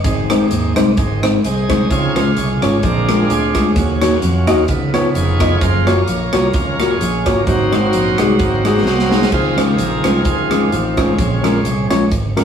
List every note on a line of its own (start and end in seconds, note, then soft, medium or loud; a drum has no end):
0.00 0.28 D#5 medium
0.04 0.44 G#1 medium
0.04 0.73 G#2 medium
0.04 0.73 G#3 soft
0.04 0.74 C4 soft
0.04 0.74 D#4 medium
0.04 kick loud
0.04 closed hi-hat medium
0.30 0.45 G#3 medium
0.30 0.45 C4 medium
0.30 0.45 D#4 medium
0.30 0.45 C5 medium
0.30 cross-stick loud
0.30 closed hi-hat medium
0.51 0.73 D#2 medium
0.51 closed hi-hat medium
0.76 0.95 C2 medium
0.76 0.91 G#3 medium
0.76 0.91 C4 medium
0.76 0.91 D#4 medium
0.76 0.91 C5 medium
0.76 cross-stick loud
0.76 closed hi-hat medium
0.97 1.37 G#1 medium
0.97 1.21 G#3 soft
0.97 1.21 C4 soft
0.97 1.21 D#4 soft
0.97 kick loud
0.97 closed hi-hat medium
1.23 1.37 G#3 medium
1.23 1.38 C4 medium
1.23 1.38 D#4 medium
1.23 1.38 C5 medium
1.23 cross-stick loud
1.23 closed hi-hat medium
1.44 1.84 C2 medium
1.44 1.88 G#4 medium
1.44 1.88 C5 medium
1.44 1.92 D#5 medium
1.44 closed hi-hat medium
1.69 1.84 G#3 medium
1.69 1.84 C4 medium
1.69 1.84 D#4 medium
1.69 1.84 C5 medium
1.69 kick medium
1.69 cross-stick loud
1.69 closed hi-hat medium
1.90 2.30 C#2 medium
1.90 2.58 C#3 medium
1.90 2.23 F3 soft
1.90 2.23 C4 soft
1.90 2.23 D#4 medium
1.90 2.80 F4 medium
1.90 2.80 G#4 medium
1.90 2.17 C#5 medium
1.90 kick loud
1.90 closed hi-hat medium
2.16 2.30 G#3 medium
2.16 2.30 C#4 medium
2.16 2.31 F4 medium
2.16 2.31 C5 medium
2.16 2.38 F5 medium
2.16 cross-stick loud
2.16 closed hi-hat medium
2.37 2.59 C2 medium
2.37 2.49 C#5 medium
2.37 closed hi-hat medium
2.62 2.80 G#1 medium
2.62 2.77 G#3 medium
2.62 2.77 C#4 medium
2.62 2.77 F4 medium
2.62 2.77 C#5 medium
2.62 2.84 C#5 medium
2.62 cross-stick loud
2.62 closed hi-hat medium
2.83 3.23 A#1 medium
2.83 3.51 A#2 medium
2.83 3.72 G#3 soft
2.83 3.72 C4 soft
2.83 3.72 D4 medium
2.83 3.72 F4 medium
2.83 3.31 A#4 medium
2.83 kick loud
2.83 closed hi-hat medium
3.08 3.23 G#3 medium
3.08 3.23 D4 medium
3.08 3.23 F4 medium
3.08 3.23 A#4 medium
3.08 cross-stick loud
3.08 closed hi-hat medium
3.30 3.69 D2 medium
3.30 3.56 G#4 medium
3.30 closed hi-hat medium
3.55 3.69 G#3 medium
3.55 3.76 C#4 soft
3.55 3.69 D4 medium
3.55 3.69 F4 medium
3.55 3.69 G#4 medium
3.55 4.19 G#4 medium
3.55 kick medium
3.55 cross-stick loud
3.55 closed hi-hat medium
3.76 4.15 D#2 medium
3.76 4.44 D#3 medium
3.76 4.65 F#3 medium
3.76 4.65 C#4 soft
3.76 4.66 F4 medium
3.76 kick medium
3.76 closed hi-hat medium
4.01 4.16 A#3 medium
4.01 4.16 D#4 medium
4.01 4.16 F#4 medium
4.01 4.16 C#5 medium
4.01 cross-stick loud
4.01 closed hi-hat medium
4.22 4.44 F2 medium
4.22 closed hi-hat medium
4.47 4.69 D#2 medium
4.47 4.62 A#3 medium
4.47 4.62 D#4 medium
4.47 4.62 F#4 medium
4.47 4.62 D#5 medium
4.47 cross-stick loud
4.47 closed hi-hat medium
4.68 5.08 C#2 medium
4.68 5.37 C#3 medium
4.68 5.58 F3 medium
4.68 5.58 B3 soft
4.68 5.58 D#4 medium
4.68 kick medium
4.68 closed hi-hat medium
4.94 5.08 B3 medium
4.94 5.08 D#4 medium
4.94 5.09 F4 medium
4.94 5.09 C#5 medium
4.94 cross-stick loud
4.94 closed hi-hat medium
5.15 5.55 F1 medium
5.15 5.59 F4 medium
5.15 5.59 G#4 medium
5.15 5.63 C#5 medium
5.15 closed hi-hat medium
5.40 5.55 B3 medium
5.40 5.55 D#4 medium
5.40 5.55 F4 medium
5.40 5.55 D#5 medium
5.40 kick medium
5.40 cross-stick loud
5.40 closed hi-hat medium
5.61 6.01 F#1 medium
5.61 5.94 F3 soft
5.61 5.94 G#3 soft
5.61 5.94 A#3 medium
5.61 5.97 F4 medium
5.61 5.85 C5 medium
5.61 kick loud
5.61 closed hi-hat medium
5.87 6.01 A#3 medium
5.87 6.01 F4 medium
5.87 6.01 F#4 medium
5.87 5.96 C#5 medium
5.87 6.01 C#5 medium
5.87 cross-stick loud
5.87 closed hi-hat medium
5.98 6.54 F4 medium
5.98 6.53 A#4 medium
5.98 6.33 C#5 medium
6.08 6.30 A#1 medium
6.08 closed hi-hat medium
6.33 6.51 C2 medium
6.33 6.48 A#3 medium
6.33 6.48 F4 medium
6.33 6.48 F#4 medium
6.33 6.48 C#5 medium
6.33 6.43 C#5 medium
6.33 cross-stick loud
6.33 closed hi-hat medium
6.53 6.94 C#2 medium
6.53 6.90 C#4 medium
6.53 6.91 F4 medium
6.53 6.91 A#4 medium
6.53 kick loud
6.53 closed hi-hat medium
6.80 6.94 A#3 medium
6.80 6.94 F4 medium
6.80 6.94 F#4 medium
6.80 6.94 A#4 medium
6.80 cross-stick loud
6.80 closed hi-hat medium
6.90 7.44 C#4 medium
6.90 7.44 F4 medium
6.90 7.27 G#4 medium
7.01 7.23 A#1 medium
7.01 closed hi-hat medium
7.26 7.44 G#1 medium
7.26 7.40 A#3 medium
7.26 7.41 F4 medium
7.26 7.41 F#4 medium
7.26 7.48 A#4 medium
7.26 7.41 C#5 medium
7.26 kick medium
7.26 cross-stick loud
7.26 closed hi-hat medium
7.47 7.86 G#1 medium
7.47 8.15 G#2 medium
7.47 9.29 F#3 medium
7.47 9.29 A#3 soft
7.47 9.29 C4 medium
7.47 8.83 D#4 medium
7.47 8.83 F#4 medium
7.47 8.86 C5 loud
7.47 kick medium
7.47 closed hi-hat medium
7.72 7.87 G#3 medium
7.72 7.87 D#4 medium
7.72 7.87 F#4 medium
7.72 7.87 C5 medium
7.72 cross-stick loud
7.72 closed hi-hat medium
7.93 8.15 A#1 medium
7.93 closed hi-hat medium
8.18 8.37 C2 medium
8.18 8.33 G#3 medium
8.18 8.33 D#4 medium
8.18 8.33 F#4 medium
8.18 8.34 G#4 medium
8.18 cross-stick loud
8.18 closed hi-hat medium
8.39 8.86 G#1 medium
8.39 kick loud
8.39 closed hi-hat medium
8.65 8.79 G#3 medium
8.65 8.80 D#4 medium
8.65 8.80 F#4 medium
8.65 8.80 G#4 medium
8.65 cross-stick loud
8.65 closed hi-hat medium
8.86 9.25 C2 medium
8.86 9.30 F#4 medium
8.86 9.30 C5 medium
8.86 9.29 D#5 loud
8.86 snare medium
8.99 snare medium
9.11 9.26 G#3 medium
9.11 9.26 D#4 medium
9.11 9.26 F#4 medium
9.11 9.26 G#4 medium
9.11 snare medium
9.22 snare medium
9.32 9.72 C#2 medium
9.32 10.01 C#3 medium
9.32 11.14 D#3 medium
9.32 11.15 F3 soft
9.32 10.25 C4 medium
9.32 10.22 F4 medium
9.32 10.22 G#4 medium
9.32 9.59 C5 medium
9.32 kick medium
9.32 crash medium
9.57 9.72 G#3 medium
9.57 9.72 C#4 medium
9.57 9.72 F4 medium
9.57 9.72 C5 medium
9.57 9.68 C#5 medium
9.57 cross-stick loud
9.57 closed hi-hat medium
9.78 10.01 A#1 medium
9.78 10.03 A#4 medium
9.78 closed hi-hat medium
10.04 10.22 C2 medium
10.04 10.19 G#3 medium
10.04 10.19 C#4 medium
10.04 10.19 F4 medium
10.04 10.26 A#4 medium
10.04 10.19 C5 medium
10.04 cross-stick loud
10.04 closed hi-hat medium
10.25 10.65 C#2 medium
10.25 11.15 C4 medium
10.25 10.71 F4 medium
10.25 10.73 G#4 medium
10.25 kick loud
10.25 closed hi-hat medium
10.51 10.65 G#3 medium
10.51 10.65 C#4 medium
10.51 10.65 F4 medium
10.51 10.66 G#4 medium
10.51 cross-stick loud
10.51 closed hi-hat medium
10.72 11.11 A1 medium
10.72 10.97 F4 medium
10.72 closed hi-hat medium
10.97 11.12 G#3 medium
10.97 11.18 G#3 soft
10.97 11.12 C#4 medium
10.97 11.87 C#4 medium
10.97 11.12 F4 medium
10.97 11.61 F4 medium
10.97 11.12 C5 medium
10.97 kick medium
10.97 cross-stick loud
10.97 closed hi-hat medium
11.17 11.58 A#1 medium
11.17 11.86 A#2 medium
11.17 11.87 C#3 medium
11.17 11.87 G#3 soft
11.17 11.88 C4 medium
11.17 kick loud
11.17 closed hi-hat medium
11.43 11.58 G#3 medium
11.43 11.58 C#4 medium
11.43 11.58 F4 medium
11.43 11.58 A#4 medium
11.43 cross-stick loud
11.43 closed hi-hat medium
11.65 11.87 C2 medium
11.65 closed hi-hat medium
11.90 12.08 A#1 medium
11.90 12.05 G#3 medium
11.90 12.05 C#4 medium
11.90 12.05 F4 medium
11.90 12.05 C#5 medium
11.90 cross-stick loud
11.90 closed hi-hat medium
12.11 12.44 G#1 medium
12.11 kick loud
12.11 closed hi-hat medium
12.37 12.44 G#3 medium
12.37 12.44 C#4 medium
12.37 12.44 F4 medium
12.37 12.44 A#4 medium
12.37 cross-stick loud
12.37 closed hi-hat medium